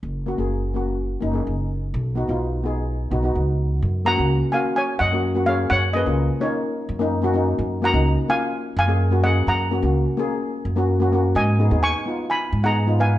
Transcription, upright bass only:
X:1
M:4/4
L:1/16
Q:1/4=128
K:F#
V:1 name="Upright bass" clef=bass
F,,,3 F,,,6- F,,, F,,,2 F,,,4 | B,,,3 B,,,6- B,,, B,,,2 C,,4 | F,,3 C,,2 z4 z F,,6 | F,,3 C,,2 z4 z F,,6 |
F,,3 C,,2 z4 z F,,6 | F,,3 C,,2 z4 z F,,6 | G,,3 D,,2 z4 z G,,6 |]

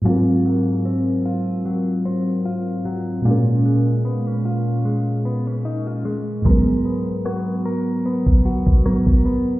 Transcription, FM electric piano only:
X:1
M:4/4
L:1/8
Q:"Swing 16ths" 1/4=75
K:Abdor
V:1 name="FM electric piano"
[A,,G,=CFB]8 | [B,,A,DB]8 | [A,,G,CB]6 [A,,G,CB]2 |]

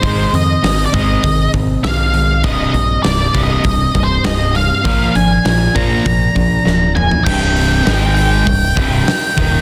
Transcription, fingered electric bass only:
X:1
M:4/4
L:1/8
Q:1/4=100
K:Cm
V:1 name="Fingered electric bass" clef=bass
A,,, F,, A,,, A,,, A,,, A,,, =B,,,2 | C,,, B,,, C,,, C,,, C,,, C,,, C,,,2 | B,,, A,,, B,,, B,,, B,,, B,,, D,,,2 | C,,,2 A,,,2 C,,, C,,, z E,,, |]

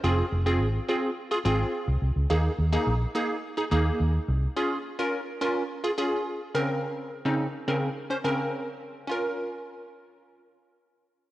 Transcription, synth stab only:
X:1
M:4/4
L:1/16
Q:1/4=106
K:Bbm
V:1 name="Synth stab"
[CFA]2 z [CFA]2 z [CFA]2 z [FA] [CFA]3 z3 | [B,EA]2 z [B,EA]2 z [B,EA]2 z [EA] [B,EA]3 z3 | [DFA]2 z [DFB]2 z [DFB]2 z [FA] [DFA]3 z [D,CDB]2- | [D,CDB]2 z [D,CDE]2 z [D,CDB]2 z [Dc] [D,CDB]3 z3 |
[DFB]16 |]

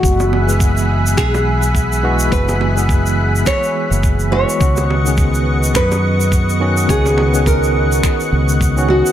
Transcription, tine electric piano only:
X:1
M:4/4
L:1/16
Q:"Swing 16ths" 1/4=105
K:C#dor
V:1 name="Tine electric piano"
[E,G,B,F]3 [E,G,B,G]8- [E,G,B,G]3 [E,G,B,F]2 | [E,G,B,F]3 [E,G,B,G]8- [E,G,B,G]3 [E,G,B,F]2 | [D,B,CF]3 [D,B,CG]8- [D,B,CG]3 [D,B,CF]2 | [D,B,CF]3 [D,B,CG]8- [D,B,CG]2 [D,B,CF]3 |]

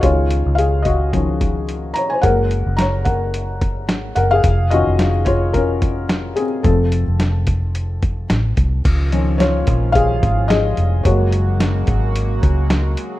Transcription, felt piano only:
X:1
M:4/4
L:1/16
Q:"Swing 16ths" 1/4=109
K:Db
V:1 name="Felt piano"
[Fd]4 [Af]2 [Ge]6 z2 [db] [ca] | [Bg]4 [db]2 [Bg]6 z2 [Bg] [Af]- | [Af]2 [Ge]4 [Fd]2 [DB]6 [CA]2 | =A12 z4 |
z4 [Fd]4 [Af]4 [Ae]4 | [Gd]12 z4 |]
V:2 name="Felt piano" clef=bass
[E,A,D]8 [E,F,D]2 z6 | [G,A,B,]6 z8 z2 | z2 [E,DF]2 z12 | [F,=A,C]2 z12 z2 |
z2 [E,F,D]6 z8 | [G,A,B,]6 z8 z2 |]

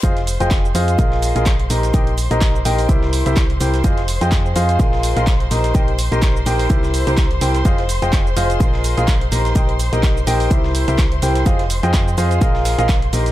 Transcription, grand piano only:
X:1
M:4/4
L:1/16
Q:"Swing 16ths" 1/4=126
K:Fm
V:1 name="Grand piano"
[FAcef] z2 [FAceg]2 z [FAcef]2 [FABef]3 [FABef] z2 [EGBeb]2 | [EGBeg] z2 [EGBeb]2 z [EGBeg]2 [=EGBc=e]3 [EGBce] z2 [EGBcg]2 | [FAcef] z2 [FAceg]2 z [FAcef]2 [FABef]3 [FABef] z2 [EGBeb]2 | [EGBeg] z2 [EGBeb]2 z [EGBeg]2 [=EGBc=e]3 [EGBcb] z2 [EGBcg] z |
[FAcef] z2 [FAceg]2 z [FAcef]2 [FABef]3 [FABef] z2 [EGBeb]2 | [EGBeg] z2 [EGBeb]2 z [EGBeg]2 [=EGBc=e]3 [EGBce] z2 [EGBcg]2 | [FAcef] z2 [FAceg]2 z [FAcef]2 [FABef]3 [FABef] z2 [EGBeb]2 |]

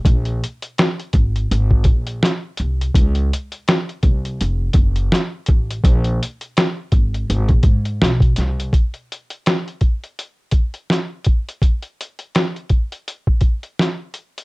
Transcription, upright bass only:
X:1
M:4/4
L:1/16
Q:"Swing 16ths" 1/4=83
K:Abmix
V:1 name="Upright bass" clef=bass
B,,,2 z4 A,,,2 A,,,2 B,,,2 z2 C,,2 | D,,2 z4 C,,2 F,,,2 G,,,2 z2 =A,,,2 | B,,,2 z4 A,,,2 A,,, B,,, A,,2 _C,,2 =C,,2 | z16 |
z16 |]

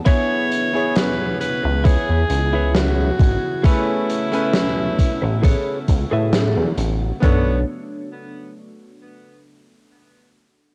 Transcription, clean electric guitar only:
X:1
M:4/4
L:1/16
Q:"Swing 16ths" 1/4=67
K:A
V:1 name="Clean electric guitar"
[EGBc]4 z4 [EGBc]2 z [EGBc]3 z2 | [GABc]4 z4 [GABc]2 z [GABe]3 z2 | [DAc]2 z12 z2 |]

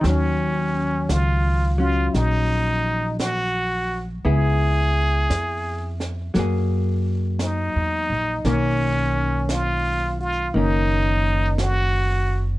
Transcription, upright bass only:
X:1
M:4/4
L:1/8
Q:"Swing" 1/4=57
K:Ebm
V:1 name="Upright bass" clef=bass
E,,2 D,,2 B,,,4 | D,,2 F,,2 G,,2- (3G,, _F,, B,,, | =B,,,4 ^F,,,4 |]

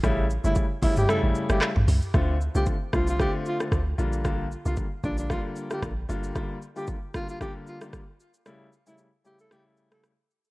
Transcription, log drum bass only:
X:1
M:4/4
L:1/16
Q:"Swing 16ths" 1/4=114
K:Dm
V:1 name="Log drum bass" clef=bass
A,,,3 G,,, z2 G,,,2 z A,,, z G,,, z A,,, ^C,, z | D,,3 C,, z2 C,,3 z3 D,,2 B,,,2- | B,,,3 C,, z2 B,,,3 z3 B,,,2 G,,,2 | z16 |
z16 |]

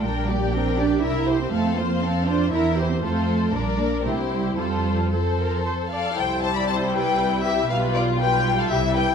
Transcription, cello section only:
X:1
M:3/4
L:1/16
Q:1/4=118
K:F
V:1 name="Cello section"
G,2 B,2 C2 D2 E3 C | A,2 B,2 C2 D2 E3 C | A,4 G,2 B,2 A,2 G,2 | G,4 F,4 z4 |
[K:C] C,12 | B,,8 C,4 |]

